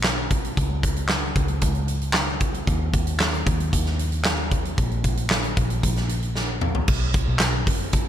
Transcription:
0.00 0.53 B1 loud
0.00 clap medium
0.04 snare medium
0.30 kick medium
0.30 closed hi-hat medium
0.44 closed hi-hat soft
0.57 1.32 C#2 medium
0.57 kick medium
0.57 closed hi-hat medium
0.83 kick medium
0.83 closed hi-hat medium
0.96 closed hi-hat soft
1.09 snare loud
1.09 clap medium
1.35 1.60 C#2 medium
1.35 kick medium
1.35 closed hi-hat medium
1.48 closed hi-hat soft
1.61 2.63 C#2 medium
1.61 kick medium
1.61 closed hi-hat medium
1.75 closed hi-hat soft
1.88 closed hi-hat medium
2.01 closed hi-hat soft
2.13 snare medium
2.13 clap medium
2.40 kick medium
2.40 closed hi-hat medium
2.54 closed hi-hat soft
2.67 3.42 D#2 loud
2.67 kick medium
2.67 closed hi-hat medium
2.93 kick medium
2.93 closed hi-hat medium
3.07 closed hi-hat soft
3.20 snare medium
3.20 clap medium
3.34 closed hi-hat soft
3.46 3.71 D#2 medium
3.46 kick medium
3.46 closed hi-hat medium
3.60 closed hi-hat soft
3.73 4.74 D#2 medium
3.73 kick medium
3.73 closed hi-hat medium
3.86 snare soft
3.99 closed hi-hat medium
4.12 closed hi-hat soft
4.25 snare loud
4.25 clap medium
4.51 kick medium
4.51 closed hi-hat medium
4.65 closed hi-hat soft
4.78 5.53 A#1 medium
4.78 kick medium
4.78 closed hi-hat medium
4.91 closed hi-hat soft
5.04 kick medium
5.04 closed hi-hat medium
5.17 closed hi-hat medium
5.30 snare loud
5.30 clap medium
5.44 closed hi-hat soft
5.57 5.81 A#1 medium
5.57 kick medium
5.57 closed hi-hat medium
5.70 closed hi-hat soft
5.83 6.84 A#1 medium
5.83 kick medium
5.83 closed hi-hat medium
5.96 snare soft
5.96 closed hi-hat soft
6.09 closed hi-hat medium
6.22 closed hi-hat soft
6.36 snare soft
6.61 mid tom medium
6.75 floor tom medium
6.88 7.25 B1 loud
6.88 kick loud
6.88 crash medium
7.14 kick medium
7.14 hi-hat pedal medium
7.14 open hi-hat medium
7.28 7.67 B1 medium
7.39 snare loud
7.39 clap medium
7.39 hi-hat pedal medium
7.39 open hi-hat medium
7.67 8.08 F#1 medium
7.67 kick medium
7.67 hi-hat pedal medium
7.67 open hi-hat medium
7.93 kick medium
7.93 hi-hat pedal medium
7.93 open hi-hat loud

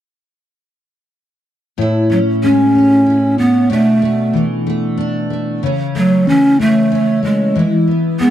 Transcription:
1.78 3.71 A2 medium
1.78 3.06 E4 soft
2.10 2.19 F#3 medium
2.10 2.74 C#4 soft
2.43 3.78 G#3 soft
2.43 3.40 C#4 medium
2.75 3.37 C#4 soft
3.06 3.70 E4 soft
3.38 3.73 B3 medium
3.38 3.77 C#4 soft
3.70 5.62 B2 medium
3.70 4.43 A3 medium
3.70 4.96 D4 medium
4.02 4.66 A3 soft
4.33 6.27 E3 soft
4.67 5.30 A3 soft
4.98 5.62 D4 medium
5.30 5.69 A3 soft
5.63 7.55 C#3 medium
5.63 6.90 C#4 medium
5.95 6.30 F#3 medium
5.95 6.58 A3 soft
6.27 7.55 E3 soft
6.27 6.62 C#4 medium
6.59 7.21 A3 soft
6.59 7.26 A3 medium
6.92 7.56 C#4 medium
7.23 7.88 G#3 medium
7.23 7.62 A3 soft
7.55 8.30 E3 medium
7.55 8.30 E4 soft
7.88 8.30 B3 soft
8.20 8.30 G#3 soft
8.20 8.30 B3 medium

